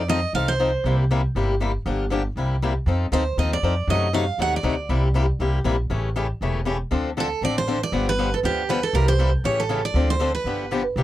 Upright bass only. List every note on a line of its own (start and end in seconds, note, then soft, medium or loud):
0.00 0.23 F2 medium
0.33 0.74 C2 medium
0.84 1.25 C2 medium
1.35 1.76 G1 medium
1.86 2.26 G1 medium
2.36 2.77 C2 medium
2.86 3.07 F2 medium
3.11 3.33 D2 medium
3.37 3.59 D#2 medium
3.62 3.84 F2 medium
3.87 4.28 F#2 medium
4.38 4.60 D#2 medium
4.63 4.85 D2 medium
4.89 5.30 C2 medium
5.39 5.61 C2 medium
5.65 5.86 A#1 medium
5.90 6.31 A1 medium
6.41 6.81 E1 medium
6.91 7.32 D2 medium
7.41 7.82 A1 medium
7.92 8.33 G1 medium
8.43 8.84 D2 medium
8.93 9.34 C2 medium
9.44 9.85 A1 medium
9.94 10.35 D2 medium
10.44 10.85 G1 medium
10.96 11.03 C2 medium